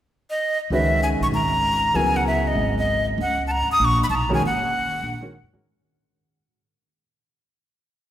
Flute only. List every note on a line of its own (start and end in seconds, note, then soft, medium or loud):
0.30 0.58 D#5 medium
0.73 1.01 E5 medium
1.03 1.09 G#5 medium
1.23 1.28 C#6 medium
1.34 1.97 A#5 medium
1.96 2.18 G#5 medium
2.16 2.27 F#5 medium
2.27 2.49 E5 medium
2.47 2.77 D#5 medium
2.79 3.06 D#5 medium
3.21 3.46 F#5 medium
3.47 3.53 A5 medium
3.52 3.69 A#5 medium
3.72 3.86 D#6 medium
3.85 4.01 C#6 medium
4.03 4.06 B5 medium
4.10 4.17 A5 medium
4.15 4.32 A#5 medium
4.34 4.43 G#5 medium
4.46 5.51 F#5 medium